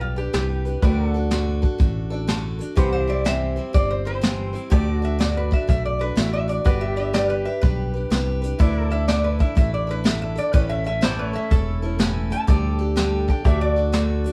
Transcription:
Already playing: B1 G3 D4 G4 B4 D5 G5
0.01 F4
0.16 D4 G4 B4
0.33 C2 G3 D4 G4 B4, snare, closed hi-hat
0.65 D4 G4 B4, closed hi-hat
0.81 D2 D3 A3 D4 F#4 A4 B4 D5, kick, closed hi-hat
0.85 G5
1.05 A4 F#5
1.14 D4 F#4 A4
1.31 D3 A3 D4 F#4 A4, snare, closed hi-hat
1.62 D4 F#4 A4, kick
1.78 A1 A3 D4 F#4 A4, kick, closed hi-hat
2.10 D4 F#4 A4 D5
2.27 D3 A3 D4 F#4 A4 A5, snare, closed hi-hat
2.59 D4 F#4 A4, closed hi-hat
2.75 C2 C3 E3 G3 C4 E4 G4 B4 C5, kick, closed hi-hat
2.79 F#5
2.93 C5
3.04 C5 E5
3.08 G3 C4 E4 D5
3.24 C3 E3 G3 C4 E4 C5 E5, snare, closed hi-hat
3.56 G3 C4 E4 C5
3.73 G1 G3 C4 E4 C5 D5, kick, closed hi-hat
3.90 C5
4.05 G3 C4 E4 C5
4.21 C3 E3 G3 C4 E4 C5, snare, closed hi-hat
4.53 G3 C4 E4 C5, closed hi-hat
4.70 D2 D3 A3 D4 F#4 G4 A4 D5, kick, closed hi-hat
4.92 F#4
5.02 D4 F#4 D5 E5
5.19 D3 A3 D4 F#4 D5, snare, closed hi-hat
5.37 B4
5.51 D4 F#4 D5 E5, kick
5.67 B1 A3 D4 F#4 D5 E5, kick, closed hi-hat
5.85 D5
5.99 D4 F#4 A4 B4 D5
6.16 A1 D3 A3 D4 F#4 D5 E5, snare, closed hi-hat
6.33 E5
6.48 D4 F#4 D5, closed hi-hat
6.64 G1 G3 D4 F#4 G4 B4 D5, kick, closed hi-hat
6.81 E5
6.86 G4
6.96 D4 G4 B4 E5
7.13 G3 D4 G4 B4 D5, snare, closed hi-hat
7.30 B4
7.45 D4 G4 B4 E5
7.61 B1 G3 D4 G4 B4, kick, closed hi-hat
7.94 D4 G4 B4
8.10 C2 G3 D4 G4 B4, snare, closed hi-hat
8.42 D4 G4 B4, closed hi-hat
8.58 D2 D3 A3 D4 E4 A4 B4 D5, kick, closed hi-hat
8.62 D5
8.87 A4
8.91 D4 E4 A4 E5
9.08 D3 A3 D4 E4 A4 D5, snare, closed hi-hat
9.24 B4
9.39 D4 E4 A4 E5, kick
9.55 A1 A3 D4 E4 A4 E5, kick, closed hi-hat
9.74 D5
9.87 D4 E4 A4 B4
10.04 D3 A3 D4 E4 A4 E5, snare, closed hi-hat
10.22 E5
10.36 D4 E4 A4 D5, closed hi-hat
10.52 A1 A2 E3 A3 C#4 E4 A4 B4 C#5, kick, closed hi-hat
10.69 E5
10.84 A3 C#4 E4 A4 E5
11.01 A2 E3 A3 C#4 E4 A4 C5, snare, closed hi-hat
11.05 D5
11.19 B4
11.25 C#5
11.33 A3 C#4 E4 A4 E5
11.50 E1 A3 C#4 E4 A4, kick, closed hi-hat
11.82 A3 C#4 E4 A4 C#5
11.99 A2 E3 A3 C#4 E4 A4, snare, closed hi-hat
12.30 A3 C#4 E4 A4 A5, closed hi-hat
12.47 D2 D3 G3 D4 G4 A4 D5, kick, closed hi-hat
12.79 D4 G4 A4
12.96 D3 G3 D4 G4 A4, snare, closed hi-hat
13.28 D4 G4 A4 G5, kick
13.43 D2 A3 D4 F#4 G4 A4 D5 E5, kick, closed hi-hat
13.47 A4 D5
13.61 F#4 D5
13.76 D4 F#4 A4
13.93 D3 A3 D4 F#4 A4, snare, closed hi-hat
14.24 D4 F#4 A4, closed hi-hat

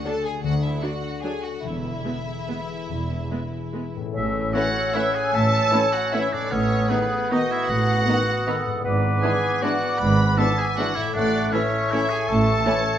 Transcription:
Already playing: D3 A3 D4 F#4
0.05 F#3 D4 A4 A5
0.25 F#4 G#4 G#5
0.43 D2 D3 F#4 F#5
0.62 A3 E4 E5
0.82 F#3 D4 F#4 F#5
1.02 F#4
1.23 F#3 D4 G#4 A4 G#5
1.43 F#4 F#5
1.63 E1 E2 E3 E4 E5
1.84 B3
2.05 G#3 B3 E4
2.27 G#4
2.49 G#3 B3 B4
2.70 G#4
2.89 E1 E2 E3
3.09 B3
3.31 G#3 B3 E4
3.52 G#4
3.73 G#3 B3 B4
3.94 A2 G#4
4.01 C#4
4.05 E4
4.10 C#4 A4
4.15 A1 A2 E5 E6
4.53 E3 A3 C#4 E4 F#4 C#5 F#5
4.94 E3 A3 C#4 E4 E5 F#5
5.14 G#4 G#5
5.33 A1 A2 A4 E5 A5
5.71 E3 A3 C#4 E4 C#5
5.92 F#4 F#5
6.13 E3 A3 C#4 E4 E5
6.32 A2 D4 D5
6.38 B3
6.42 D#4
6.46 B4
6.51 A1 A2 B3 C#4 A4 C#5 D#6
6.90 D#3 B3 D#4 G#4 B4
7.31 D#3 B3 D#4 F#4 D#5
7.51 E4 E5
7.68 A1 A2 F#4 F#5
8.07 D#3 B3 D#4
8.47 D#3 B3 D#4 A4
8.66 G#2
8.71 B3
8.75 E4
8.80 D5
8.84 G#1 G#2 B3 B4 D6
9.22 E3 G#3 B3 D4 E4 G#4 G#5
9.62 E3 G#3 B3 D4 E4 F#4 D5 F#5
9.99 G#1 G#2 B4 B5
10.37 E3 G#3 B3 D4 E4 A4 E5 A5
10.57 G#4 G#5
10.77 E3 G#3 B3 D4 E4 F#4 F#5
10.95 A2 E4 E5
11.01 A3
11.06 E4
11.10 D4 C#5
11.15 A1 A2 A3 D5 F#5 C#6
11.51 E3 A3 C#4 E4 C#5 E5
11.91 E3 A3 C#4 E4 C#5 E5
12.09 G#4 G#5
12.28 A1 A2 A4 A5
12.66 E3 A3 C#4 E4 C#5

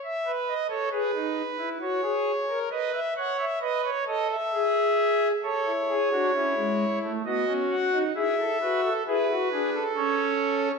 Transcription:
0.04 E5
0.26 B4
0.48 D#5
0.70 A4 C#5
0.91 G#4 B4
1.14 D#4
1.58 E4
1.81 F#4 C#5
2.03 G#4
2.49 A#4
2.71 B4 D#5
2.94 E5
3.17 C#5 F#5
3.39 E5
3.61 B4 D#5
3.84 C#5
4.07 A4 D#5
4.30 E5
4.53 G#4
5.44 A4 C#5
5.67 E4
5.90 G#4
6.12 D4 F#4
6.35 C#4 E4
6.57 G#3
7.03 A3
7.25 B3 F#4 D#5
7.47 C#4
7.70 F#5
7.93 D#4
8.16 E4 G#4 E5
8.39 A4
8.62 F#4 B4
8.85 A4
9.08 E4 G#4 B4
9.30 F#4
9.52 D4 G#4
9.74 A4
9.96 C#4 C#5

